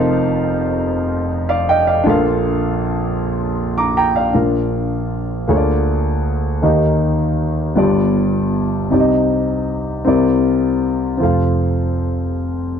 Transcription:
0.00 2.02 F1 medium
0.00 2.02 F2 medium
0.00 2.01 D#4 medium
0.00 2.01 F4 medium
0.00 2.02 A#4 medium
0.00 2.02 C5 medium
0.00 1.28 F5 medium
1.49 1.68 D5 medium
1.49 1.67 F5 medium
1.69 1.87 D#5 medium
1.69 1.87 G5 medium
1.87 2.24 D5 medium
1.87 2.08 F5 medium
2.04 4.30 A#1 medium
2.04 4.30 A#2 medium
2.04 4.29 D4 medium
2.04 4.30 F4 medium
2.04 4.30 A4 medium
2.08 4.31 A#4 medium
2.08 3.19 F5 medium
3.78 3.96 A#5 medium
3.78 3.95 D6 medium
3.97 4.15 G5 medium
3.97 4.15 A#5 medium
4.16 4.52 D5 soft
4.16 4.34 F5 medium
4.33 5.45 A#1 soft
4.33 5.44 A#2 soft
4.33 5.48 D4 soft
4.33 5.47 F4 soft
4.33 5.49 A#4 soft
4.33 5.49 F5 soft
5.47 6.59 D2 medium
5.47 6.59 D3 soft
5.47 6.60 A#3 medium
5.47 6.63 F4 soft
5.47 6.63 G#4 soft
5.47 5.56 C#5 soft
5.57 6.67 D5 medium
6.62 7.73 D#2 soft
6.62 7.73 D#3 soft
6.62 7.77 A#3 soft
6.62 7.77 D#4 soft
6.62 7.76 G4 soft
6.62 7.78 D#5 soft
7.75 8.87 G1 soft
7.75 8.87 G2 medium
7.75 8.91 B3 soft
7.75 8.91 F4 soft
7.75 8.91 G4 soft
7.75 8.92 D5 medium
8.90 10.02 C2 soft
8.90 10.02 C3 soft
8.90 10.03 C4 soft
8.90 10.06 D#4 soft
8.90 10.07 G4 soft
8.90 8.99 D5 soft
9.00 10.10 D#5 soft
10.05 11.17 C2 medium
10.05 11.17 C3 medium
10.05 11.16 C4 medium
10.05 11.21 E4 soft
10.05 11.21 A#4 soft
10.05 11.22 D5 medium
11.17 12.80 F1 soft
11.17 12.80 F2 soft
11.17 12.80 C4 soft
11.17 12.80 F4 soft
11.22 12.80 A4 soft
11.22 12.35 F5 medium

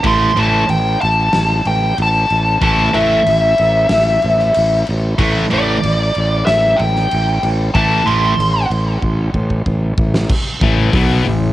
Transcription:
0.04 0.30 A1 loud
0.04 0.30 A2 medium
0.04 0.30 E3 medium
0.04 0.31 A3 loud
0.04 0.39 C6 loud
0.04 kick loud
0.04 crash medium
0.36 0.63 A1 medium
0.36 0.62 A2 medium
0.36 0.62 E3 loud
0.36 0.63 A3 loud
0.36 0.70 A5 loud
0.36 crash medium
0.69 0.95 A1 medium
0.69 1.01 G5 medium
0.69 crash medium
1.01 1.28 A1 medium
1.01 1.67 A5 medium
1.01 crash medium
1.33 1.59 A1 medium
1.33 snare loud
1.33 crash medium
1.65 1.91 A1 medium
1.65 1.96 G5 medium
1.65 crash medium
1.98 2.24 A1 medium
1.98 crash medium
2.02 2.62 A5 medium
2.30 2.56 A1 medium
2.30 crash soft
2.61 2.88 A1 loud
2.61 2.87 A2 medium
2.61 2.87 E3 loud
2.61 2.88 A3 loud
2.61 2.93 A5 loud
2.61 kick loud
2.61 crash medium
2.93 3.20 A1 medium
2.93 3.19 A2 medium
2.93 3.19 E3 medium
2.93 3.20 A3 loud
2.93 4.83 E5 medium
2.93 crash medium
3.26 3.52 A1 medium
3.26 crash medium
3.58 3.85 A1 medium
3.58 crash medium
3.89 4.16 A1 loud
3.89 snare loud
3.89 crash medium
4.22 4.49 A1 medium
4.22 crash medium
4.39 snare soft
4.54 4.82 A1 medium
4.54 crash medium
4.87 5.14 A1 medium
4.87 crash medium
5.18 5.44 A1 loud
5.18 5.44 A2 medium
5.18 5.44 E3 medium
5.18 5.45 A3 loud
5.18 kick loud
5.18 crash medium
5.50 5.78 A1 medium
5.50 5.76 A2 loud
5.50 5.76 E3 loud
5.50 5.77 A3 loud
5.50 6.45 D5 loud
5.50 crash medium
5.83 6.09 A1 medium
5.83 crash medium
6.15 6.41 A1 medium
6.15 crash medium
6.46 6.73 A1 medium
6.46 6.79 E5 medium
6.46 snare loud
6.46 crash medium
6.77 7.05 A1 loud
6.77 7.70 G5 medium
6.77 crash medium
6.96 snare soft
7.11 7.38 A1 medium
7.11 crash medium
7.43 7.69 A1 loud
7.43 crash medium
7.74 8.00 A1 loud
7.74 8.00 A2 medium
7.74 8.00 E3 medium
7.74 8.01 A3 medium
7.74 8.04 A5 loud
7.74 kick loud
7.74 crash medium
8.06 8.32 A1 medium
8.06 8.32 A2 loud
8.06 8.33 E3 medium
8.06 8.33 A3 loud
8.06 8.66 C6 loud
8.06 crash medium
8.39 8.64 A1 medium
8.39 crash medium
8.70 8.96 A1 medium
8.70 crash medium
9.02 9.28 A1 medium
9.02 kick medium
9.34 9.60 A1 medium
9.34 kick medium
9.50 kick medium
9.66 9.92 A1 medium
9.66 kick medium
9.98 10.23 A1 medium
9.98 kick loud
10.14 snare medium
10.30 kick loud
10.30 crash loud
10.61 10.92 A1 loud
10.61 10.93 A2 medium
10.61 10.93 E3 loud
10.61 10.94 A3 loud
10.61 kick loud
10.93 11.23 B1 loud
10.93 11.24 B2 loud
10.93 11.25 F#3 loud
10.93 11.25 B3 loud
10.93 kick loud
10.93 open hi-hat medium
11.25 11.53 A1 medium
11.25 11.51 A2 medium
11.25 11.51 E3 medium

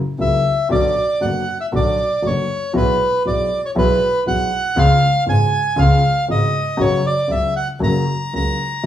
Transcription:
0.18 0.41 C#2 medium
0.18 0.41 C#3 medium
0.18 0.41 F#3 soft
0.18 0.41 A#3 soft
0.18 0.41 E4 soft
0.18 0.68 E5 medium
0.69 0.92 B1 medium
0.69 0.92 B2 medium
0.69 0.92 D3 medium
0.69 0.92 F#3 medium
0.69 0.92 B3 medium
0.69 0.92 F#4 medium
0.69 1.24 D5 medium
1.20 1.43 F#1 soft
1.20 1.44 F#1 medium
1.20 1.43 F#2 soft
1.20 1.43 D3 soft
1.20 1.43 F#3 soft
1.20 1.43 B3 soft
1.20 1.43 F#4 soft
1.20 1.58 F#5 medium
1.61 1.66 E5 medium
1.72 1.94 B1 medium
1.72 1.94 B2 medium
1.72 1.94 D3 medium
1.72 1.94 F#3 medium
1.72 1.94 B3 medium
1.72 1.94 F#4 medium
1.72 2.27 D5 medium
2.22 2.45 F#1 soft
2.22 2.45 F#1 medium
2.22 2.44 F#2 medium
2.22 2.45 D3 soft
2.22 2.44 F#3 soft
2.22 2.45 B3 soft
2.22 2.45 F#4 soft
2.27 2.73 C#5 medium
2.73 2.95 B1 medium
2.73 2.95 B2 medium
2.73 2.95 E3 medium
2.73 2.95 G#3 medium
2.73 2.96 B3 medium
2.73 2.96 F#4 medium
2.73 3.23 B4 medium
3.25 3.46 B1 medium
3.25 3.47 B1 medium
3.25 3.46 B2 medium
3.25 3.46 E3 soft
3.25 3.46 G#3 soft
3.25 3.46 B3 soft
3.25 3.47 F#4 soft
3.25 3.61 D5 medium
3.66 3.71 C#5 medium
3.75 3.97 B1 medium
3.75 3.97 B2 medium
3.75 3.96 E3 medium
3.75 3.96 G#3 medium
3.75 3.97 B3 medium
3.75 3.97 F#4 medium
3.75 4.24 B4 medium
4.26 4.47 B1 medium
4.26 4.47 B2 medium
4.26 4.47 E3 soft
4.26 4.47 G#3 soft
4.26 4.47 B3 soft
4.26 4.47 F#4 soft
4.26 4.79 F#5 medium
4.76 4.97 C#2 medium
4.76 4.97 C#3 medium
4.76 4.97 G#3 medium
4.76 4.97 B3 medium
4.76 4.97 F4 medium
4.76 5.24 F5 loud
5.26 5.48 G#1 medium
5.26 5.48 G#2 medium
5.26 5.48 C#3 soft
5.26 5.48 G#3 soft
5.26 5.48 B3 soft
5.26 5.48 F4 medium
5.26 5.80 G#5 medium
5.76 5.98 C#2 medium
5.76 5.98 C#3 medium
5.76 5.98 G#3 medium
5.76 5.98 B3 medium
5.76 5.98 F4 medium
5.76 6.25 F5 medium
6.28 6.49 G#1 medium
6.28 6.49 G#2 medium
6.28 6.49 C#3 soft
6.28 6.49 G#3 soft
6.28 6.50 B3 soft
6.28 6.49 F4 soft
6.28 6.82 D#5 medium
6.77 7.00 F#1 medium
6.77 6.99 F#2 medium
6.77 6.99 C#3 medium
6.77 7.00 F#3 medium
6.77 6.99 B3 medium
6.77 6.99 F#4 medium
6.77 7.06 C#5 medium
7.06 7.31 D5 medium
7.28 7.50 C#2 medium
7.28 7.51 C#2 soft
7.28 7.50 C#3 soft
7.28 7.50 F#3 soft
7.28 7.50 B3 soft
7.28 7.51 F#4 soft
7.28 7.54 E5 medium
7.56 7.68 F#5 medium
7.80 8.02 F#1 medium
7.80 8.02 F#2 medium
7.80 8.02 C#3 medium
7.80 8.02 F#3 medium
7.80 8.02 A#3 medium
7.80 8.03 F#4 medium
7.80 8.34 A#5 medium
8.33 8.55 C#2 medium
8.33 8.55 C#2 soft
8.33 8.55 C#3 soft
8.33 8.55 F#3 soft
8.33 8.55 A#3 soft
8.33 8.55 F#4 soft
8.33 8.86 A#5 medium

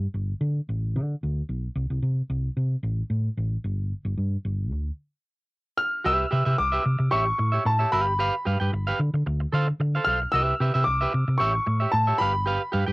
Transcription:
0.14 0.33 G1 medium
0.41 0.59 D3 medium
0.69 0.97 A1 medium
0.96 1.14 D3 medium
1.23 1.41 D2 medium
1.49 1.67 B1 medium
1.75 1.85 C2 loud
1.90 1.99 C2 medium
2.02 2.21 C3 medium
2.30 2.48 C2 loud
2.57 2.75 C3 medium
2.83 3.01 A1 loud
3.10 3.28 A2 medium
3.37 3.55 A1 medium
3.64 3.92 G1 loud
4.05 4.13 G1 medium
4.17 4.36 G2 medium
4.45 4.71 G1 medium
4.71 4.89 D2 medium
5.77 6.02 F6 loud
6.04 6.23 C2 medium
6.04 6.25 G4 medium
6.04 6.25 B4 medium
6.04 6.25 E5 medium
6.04 6.60 E6 loud
6.31 6.42 C3 medium
6.31 6.43 G4 medium
6.31 6.43 B4 medium
6.31 6.43 E5 medium
6.45 6.55 C3 medium
6.45 6.57 G4 medium
6.45 6.56 B4 medium
6.45 6.56 E5 medium
6.58 6.77 C2 loud
6.58 7.13 D6 medium
6.58 muted clean electric guitar stroke soft
6.72 6.83 G4 medium
6.72 6.84 B4 medium
6.72 6.85 E5 medium
6.84 6.95 C3 medium
6.84 muted clean electric guitar stroke soft
6.99 7.08 C3 medium
6.99 muted clean electric guitar stroke medium
7.11 7.31 A1 loud
7.11 7.26 G4 medium
7.11 7.26 C#5 medium
7.11 7.25 E5 medium
7.11 7.67 C#6 medium
7.26 muted clean electric guitar stroke soft
7.38 7.57 A2 medium
7.38 muted clean electric guitar stroke soft
7.52 7.64 G4 soft
7.52 7.63 C#5 medium
7.52 7.63 E5 medium
7.65 7.84 A2 loud
7.65 7.93 A5 medium
7.65 muted clean electric guitar stroke soft
7.79 7.90 G4 soft
7.79 7.90 C#5 medium
7.79 7.90 E5 medium
7.92 8.29 G1 loud
7.92 8.12 G4 medium
7.92 8.07 B4 medium
7.92 8.06 F5 medium
7.92 8.95 B5 medium
8.07 muted clean electric guitar stroke medium
8.19 8.34 G4 medium
8.19 8.34 B4 loud
8.19 8.34 F5 loud
8.45 8.56 G2 loud
8.45 8.57 G4 medium
8.45 8.58 B4 medium
8.45 8.58 F5 medium
8.60 8.69 G2 loud
8.60 8.71 G4 soft
8.60 8.71 B4 medium
8.60 8.70 G5 medium
8.73 8.91 G1 loud
8.73 muted clean electric guitar stroke soft
8.87 9.00 G4 medium
8.87 9.01 B4 medium
8.87 9.00 F5 medium
8.99 9.09 D3 loud
8.99 muted clean electric guitar stroke soft
9.14 9.22 D3 medium
9.14 muted clean electric guitar stroke soft
9.27 9.45 D2 loud
9.27 muted clean electric guitar stroke medium
9.41 muted clean electric guitar stroke soft
9.53 9.71 D3 loud
9.53 9.67 A4 medium
9.53 9.68 C5 loud
9.53 9.67 F5 medium
9.68 muted clean electric guitar stroke medium
9.80 9.98 D3 loud
9.80 muted clean electric guitar stroke soft
9.95 10.06 A4 medium
9.95 10.07 C5 medium
9.95 10.07 F5 medium
10.05 10.24 B1 loud
10.05 10.18 A4 medium
10.05 10.19 C5 medium
10.05 10.33 F6 loud
10.09 10.19 F5 medium
10.22 muted clean electric guitar stroke medium
10.32 10.51 C2 loud
10.32 10.53 G4 medium
10.32 10.54 B4 medium
10.32 10.54 E5 medium
10.32 10.87 E6 loud
10.60 10.70 C3 medium
10.60 10.71 G4 medium
10.60 10.72 B4 medium
10.60 10.72 E5 medium
10.74 10.83 C3 loud
10.74 10.85 G4 medium
10.74 10.84 B4 medium
10.74 10.84 E5 medium
10.84 11.05 C2 loud
10.84 11.40 D6 medium
10.84 muted clean electric guitar stroke soft
11.01 11.12 G4 medium
11.01 11.13 B4 medium
11.01 11.13 E5 medium
11.13 11.23 C3 medium
11.13 muted clean electric guitar stroke soft
11.28 11.36 C3 medium
11.28 muted clean electric guitar stroke medium
11.38 11.58 A1 loud
11.38 11.54 G4 medium
11.38 11.54 C#5 loud
11.38 11.53 E5 loud
11.38 11.88 C#6 medium
11.54 muted clean electric guitar stroke medium
11.66 11.85 A2 medium
11.66 muted clean electric guitar stroke medium
11.80 11.91 G4 medium
11.80 11.91 C#5 medium
11.80 11.90 E5 medium
11.92 12.11 A2 loud
11.92 12.19 A5 medium
11.92 muted clean electric guitar stroke soft
12.07 12.18 G4 medium
12.07 12.18 C#5 medium
12.07 12.17 E5 medium
12.18 12.57 G1 medium
12.18 12.34 G4 medium
12.18 12.34 B4 medium
12.18 12.32 F5 medium
12.18 12.93 B5 loud
12.34 muted clean electric guitar stroke soft
12.46 12.61 G4 medium
12.46 12.61 B4 loud
12.46 12.61 F5 medium
12.72 12.83 G2 loud
12.72 12.84 G4 medium
12.72 12.84 B4 medium
12.72 12.85 F5 medium
12.86 12.93 G2 medium
12.86 12.93 G4 medium
12.86 12.93 B4 medium
12.86 12.93 G5 medium

